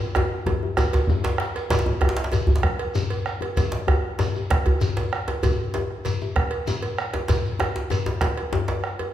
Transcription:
0.00 bombo rim, shekere
0.15 bombo rim, cowbell, djembe slap, djembe tone
0.46 bombo low, cowbell, djembe tone, djembe bass
0.63 djembe tone
0.77 bombo rim, cowbell, djembe slap, djembe tone, shekere
0.92 bombo rim, cowbell, djembe slap, djembe tone, shekere
1.07 bombo low, djembe tone, djembe bass, shekere
1.24 cowbell, djembe slap, shekere
1.38 bombo rim, djembe slap, shekere
1.56 cowbell, djembe slap, shekere
1.70 bombo low, cowbell, djembe slap, djembe bass, shekere
1.79 djembe slap
1.86 djembe tone
2.01 bombo rim, cowbell, djembe tone, djembe bass
2.09 djembe slap
2.17 bombo rim, djembe slap
2.24 djembe slap
2.32 cowbell, djembe slap, djembe tone, djembe bass, shekere
2.47 djembe tone, djembe bass, shekere
2.56 djembe slap
2.63 bombo rim, bombo low, cowbell, djembe slap
2.79 cowbell
2.95 bombo rim, djembe slap, djembe tone, djembe bass, shekere
3.10 cowbell, shekere
3.26 bombo rim, shekere
3.41 cowbell, djembe slap, djembe tone
3.57 bombo low, cowbell, djembe slap, djembe bass, shekere
3.72 djembe slap
3.88 bombo rim, cowbell, djembe tone, djembe bass
4.04 bombo rim
4.19 cowbell, djembe slap, djembe bass, shekere
4.34 djembe tone, shekere
4.50 bombo rim, bombo low, cowbell, djembe slap
4.66 cowbell, djembe bass
4.81 bombo rim, djembe slap, djembe tone, djembe bass, shekere
4.96 cowbell, djembe slap, shekere
5.12 bombo rim, shekere
5.28 cowbell, djembe slap, djembe tone
5.43 bombo low, cowbell, djembe slap, djembe bass, shekere
5.74 cowbell, djembe slap, djembe tone
5.91 bombo rim
6.05 cowbell, djembe slap, djembe bass, shekere
6.21 djembe tone, shekere
6.36 bombo rim, bombo low, cowbell, djembe slap
6.51 cowbell
6.67 bombo rim, djembe slap, djembe tone, shekere
6.83 cowbell, shekere
6.98 bombo rim, shekere
7.13 cowbell, djembe slap, djembe tone
7.28 bombo rim, bombo low, cowbell, djembe slap, djembe bass, shekere
7.45 shekere
7.59 bombo rim, cowbell, djembe slap, djembe tone, shekere
7.75 djembe slap
7.90 bombo rim, cowbell, djembe slap, djembe bass, shekere
8.06 djembe slap, djembe tone
8.21 bombo rim, bombo low, cowbell, djembe slap
8.37 bombo rim, cowbell
8.53 djembe slap, djembe tone, djembe bass
8.68 bombo rim, cowbell, djembe slap
8.84 bombo rim, shekere
8.99 cowbell, djembe slap, djembe tone

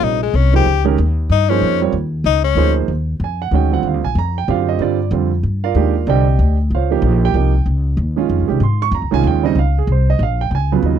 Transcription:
Already playing: C3 G3 F4 A#4 C#5
0.02 A#1 D#4
0.23 G#3
0.34 C2 C#4
0.53 F3 A#3 D#4 G4 G#4 C5
0.66 C#2
0.85 D#3 G#3 C#4 G4 A#4
0.98 D#2
1.29 G2 D#4
1.49 F3 A#3 C#4 D#4 G#4 C5
1.61 F2
1.81 G3 C4 F4 A#4 C#5
1.92 D#2
2.24 C#2 D#4
2.44 C#4
2.55 D2 F3 A#3 D#4 G#4 C5
2.88 D#2
3.20 F2
3.24 G#5
3.42 F#5
3.51 D2 D#3 G#3 C#4 F#4
3.55 G5
3.72 D3 G3 C4 F4 F#5
3.83 D#2
3.87 F5
3.94 D2
4.04 A#1 G#5
4.15 F2 A#5
4.38 G5
4.48 F#2 D3 C4 F4 G4 F5
4.69 D#5
4.79 G2 D3 G3 C4 F4 D5
5.11 F2 D3 G3 C4 F4
5.43 G2
5.64 F4 A#4 D5 F5
5.75 D#2 D#3 G#3 D4 G4
6.07 C2 D3 G3 C4 D4 G4 D5 D#5 G5
6.39 D2
6.70 C#2
6.75 F4 C5 C#5 F5
6.90 F3 A#3 D#4 G4
7.02 A#1
7.25 G4 G5
7.34 C2 F3 A#3 D#4 G4
7.66 C#2
7.97 D#2
8.16 D#3 G#3 C#4 F4
8.29 F2
8.40 C#2
8.48 C2 D#3 G#3 C#4 G4
8.60 G#2 C6
8.82 C#6
8.91 F2 A#5
9.02 C#2
9.11 C2 D#3 G#3 C#4 F4 G#5
9.23 D#2 G5
9.43 C#3 G3 C4 D#4 D#5
9.55 C#2 F5
9.79 G#4
9.87 C2
9.92 C5
10.10 D#5
10.19 A#1 F5
10.41 G5
10.51 C#2 G5
10.55 G#5
10.72 C#3 F#3 B3 F4 B4
10.83 D#2 D#5

